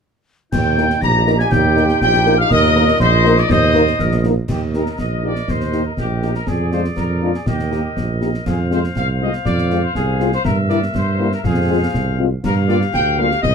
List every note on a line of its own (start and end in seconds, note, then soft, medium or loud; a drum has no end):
0.52 0.94 D#2 medium
0.52 4.20 A#2 medium
0.52 4.20 D#4 medium
0.52 0.99 G5 loud
0.52 1.03 G6 medium
0.52 concert bass drum medium
0.52 snare medium
0.52 crash medium
0.77 0.86 A#3 medium
0.77 0.86 D#4 medium
0.77 0.86 A#4 medium
0.77 snare medium
0.90 snare medium
1.01 1.44 A#1 medium
1.01 2.47 G4 medium
1.01 1.37 A#5 loud
1.01 1.38 A#6 medium
1.01 concert bass drum medium
1.01 snare medium
1.27 1.36 A#3 medium
1.27 1.36 D#4 medium
1.27 1.36 A#4 medium
1.27 snare medium
1.38 1.51 G#5 medium
1.38 1.44 G#6 medium
1.38 snare medium
1.51 1.93 D#2 medium
1.51 2.01 G5 loud
1.51 1.97 G6 medium
1.51 concert bass drum medium
1.51 snare medium
1.77 1.86 A#3 medium
1.77 1.86 D#4 medium
1.77 1.86 A#4 medium
1.77 snare medium
1.89 snare medium
2.00 2.43 A#1 medium
2.00 2.36 G5 loud
2.00 2.35 G6 loud
2.00 concert bass drum medium
2.00 snare medium
2.13 snare medium
2.26 2.35 A#3 medium
2.26 2.35 D#4 medium
2.26 2.35 A#4 medium
2.26 snare medium
2.38 2.50 F5 loud
2.38 2.50 F6 loud
2.50 2.92 D#2 medium
2.50 2.97 A#4 loud
2.50 2.97 D#5 loud
2.50 2.96 D#6 medium
2.50 concert bass drum medium
2.50 snare medium
2.75 2.85 A#3 medium
2.75 2.85 D#4 medium
2.75 2.85 A#4 medium
2.75 snare medium
2.88 snare medium
3.00 3.42 A#1 loud
3.00 3.38 C5 loud
3.00 3.50 D#5 loud
3.00 3.39 C6 loud
3.00 concert bass drum medium
3.00 snare medium
3.25 3.34 A#3 medium
3.25 3.34 D#4 medium
3.25 3.34 A#4 medium
3.25 snare medium
3.37 3.51 D5 medium
3.37 3.51 D6 medium
3.37 snare medium
3.50 3.91 D#2 medium
3.50 3.99 C5 loud
3.50 4.20 D#5 loud
3.50 4.24 D#6 loud
3.50 concert bass drum loud
3.50 snare medium
3.74 3.83 A#3 medium
3.74 3.83 D#4 medium
3.74 3.83 A#4 medium
3.74 snare medium
3.87 snare medium
3.99 4.41 A#1 medium
3.99 4.24 A#4 medium
3.99 concert bass drum medium
3.99 snare medium
4.11 snare medium
4.24 4.33 A#3 medium
4.24 4.33 D#4 medium
4.24 4.33 A#4 medium
4.24 snare medium
4.48 4.90 D#2 medium
4.48 4.61 G4 medium
4.48 6.43 A#4 medium
4.48 6.43 D#5 medium
4.48 concert bass drum medium
4.48 snare medium
4.48 crash soft
4.74 4.83 A#3 soft
4.74 4.83 D#4 soft
4.74 4.83 G4 soft
4.74 4.98 A#4 medium
4.74 snare soft
4.86 snare soft
4.98 5.40 A#1 soft
4.98 5.22 D#5 medium
4.98 concert bass drum medium
4.98 snare medium
5.23 5.32 A#3 soft
5.23 5.32 D#4 soft
5.23 5.32 G4 soft
5.23 5.49 D5 medium
5.35 snare soft
5.48 5.90 D#2 medium
5.48 5.86 C5 medium
5.48 concert bass drum medium
5.48 snare medium
5.60 snare soft
5.72 5.82 A#3 soft
5.72 5.82 D#4 soft
5.72 5.82 G4 soft
5.72 snare soft
5.86 5.91 A#4 medium
5.97 6.39 A#1 medium
5.97 6.33 G4 medium
5.97 concert bass drum medium
5.97 snare medium
6.22 6.31 A#3 soft
6.22 6.31 D#4 soft
6.22 6.31 G4 soft
6.22 snare soft
6.34 6.47 A#4 medium
6.34 snare soft
6.47 6.89 F2 medium
6.47 7.47 G#4 medium
6.47 6.72 G#4 medium
6.47 7.47 D5 medium
6.47 concert bass drum medium
6.47 snare medium
6.72 6.81 G#3 soft
6.72 6.81 D4 soft
6.72 6.81 F4 soft
6.72 6.83 C5 medium
6.72 snare soft
6.84 snare soft
6.97 7.34 F2 medium
6.97 7.32 A#4 medium
6.97 concert bass drum medium
6.97 snare medium
7.22 7.31 G#3 soft
7.22 7.31 D4 soft
7.22 7.31 F4 soft
7.34 7.40 G#4 medium
7.34 snare soft
7.46 7.88 D#2 medium
7.46 8.17 G4 medium
7.46 8.42 A#4 medium
7.46 8.42 D#5 medium
7.46 concert bass drum medium
7.46 snare medium
7.59 snare soft
7.71 7.80 A#3 soft
7.71 7.80 D#4 soft
7.71 7.80 G4 soft
7.71 snare soft
7.96 8.38 A#1 medium
7.96 concert bass drum medium
7.96 snare medium
8.21 8.30 A#3 medium
8.21 8.30 D#4 soft
8.21 8.30 G4 soft
8.21 snare soft
8.34 snare soft
8.46 8.87 F2 medium
8.46 8.58 G#4 medium
8.46 10.45 C5 medium
8.46 10.45 F5 medium
8.46 concert bass drum medium
8.46 snare medium
8.46 crash soft
8.70 8.80 G#3 medium
8.70 8.80 C4 medium
8.70 8.80 F4 medium
8.70 8.83 C5 medium
8.70 snare soft
8.84 snare soft
8.95 9.37 C2 medium
8.95 9.08 F5 medium
8.95 concert bass drum medium
8.95 snare medium
9.20 9.29 G#3 soft
9.20 9.29 C4 soft
9.20 9.30 F4 soft
9.20 9.32 D#5 medium
9.33 snare medium
9.45 9.87 F2 medium
9.45 9.80 D5 medium
9.45 concert bass drum medium
9.45 snare medium
9.58 snare medium
9.70 9.79 G#3 soft
9.70 9.79 C4 soft
9.70 9.79 F4 medium
9.70 snare soft
9.84 9.96 C5 medium
9.94 10.36 C2 medium
9.94 10.30 G#4 medium
9.94 concert bass drum medium
9.94 snare medium
10.20 10.29 G#3 medium
10.20 10.29 C4 medium
10.20 10.29 F4 soft
10.20 snare soft
10.32 10.44 C5 medium
10.32 snare soft
10.44 10.86 G2 medium
10.44 11.40 A#4 medium
10.44 10.56 A#4 medium
10.44 11.40 E5 medium
10.44 concert bass drum medium
10.44 snare medium
10.69 10.78 G3 medium
10.69 10.78 A#3 medium
10.69 10.78 E4 medium
10.69 10.81 D5 medium
10.69 snare soft
10.82 snare soft
10.94 11.36 G2 medium
10.94 11.30 C5 medium
10.94 concert bass drum medium
10.94 snare medium
11.19 11.28 G3 medium
11.19 11.28 A#3 medium
11.19 11.28 E4 medium
11.32 11.38 A#4 medium
11.32 snare soft
11.44 11.85 F2 medium
11.44 12.15 G#4 medium
11.44 12.27 C5 medium
11.44 12.27 F5 medium
11.44 concert bass drum medium
11.44 snare medium
11.69 11.78 G#3 medium
11.69 11.78 C4 medium
11.69 11.78 F4 medium
11.93 12.35 C2 medium
11.93 concert bass drum medium
11.93 snare medium
12.18 12.27 G#3 medium
12.18 12.28 C4 medium
12.18 12.27 F4 medium
12.44 12.85 G2 medium
12.44 13.55 G4 medium
12.44 12.55 A#4 medium
12.44 13.39 F5 medium
12.44 concert bass drum medium
12.44 snare medium
12.44 crash soft
12.68 12.77 G3 medium
12.68 12.77 A#3 medium
12.68 12.77 F4 medium
12.68 12.80 D5 medium
12.68 snare soft
12.82 snare soft
12.93 13.35 D2 medium
12.93 13.17 G5 loud
12.93 concert bass drum medium
12.93 snare medium
13.18 13.27 G3 medium
13.18 13.27 A#3 medium
13.18 13.27 F4 medium
13.18 13.43 F5 loud
13.31 snare soft
13.42 13.55 C2 medium
13.42 13.55 D#5 loud
13.42 13.55 D#5 medium
13.42 concert bass drum medium
13.42 snare medium